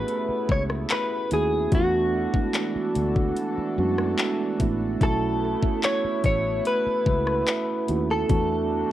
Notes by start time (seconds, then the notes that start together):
Already playing: A3 B3 C#4 E4 F#4 G4 G#4 B4
0.08 closed hi-hat
0.29 muted fingered electric bass stroke
0.49 C#2 C#5, kick
0.70 cross-stick
0.90 B4, clap, closed hi-hat
1.31 D#2 A3 C#4 E4 F#4 G#4, closed hi-hat
1.72 E2 E3 A3 B3 D4 F#4 A4, kick, closed hi-hat
2.34 G#3 B3 D4 E4, kick
2.40 A3
2.54 clap, closed hi-hat
2.76 muted fingered electric bass stroke
2.95 D2, closed hi-hat
3.16 kick
3.37 closed hi-hat
3.58 muted fingered electric bass stroke
3.78 F#2 G#3 B3 D4 F#4
3.84 A3
3.98 cross-stick
4.18 clap, closed hi-hat
4.59 A1 A3 B3 D4 E4, kick, closed hi-hat
5.01 B1 A3 B3 C#4 E4 F#4 A4, kick, closed hi-hat
5.62 A3 C#4 E4 A4, kick
5.83 C#5, clap, closed hi-hat
6.04 muted fingered electric bass stroke
6.24 A1 C#5, kick, closed hi-hat
6.65 B4, closed hi-hat
6.86 muted fingered electric bass stroke
7.06 C#2, kick
7.27 cross-stick
7.48 clap, closed hi-hat
7.88 D#2 A3 C#4 E4 F#4, closed hi-hat
8.11 A4
8.29 E2 E3 A3 B3 D4 F#4, kick, closed hi-hat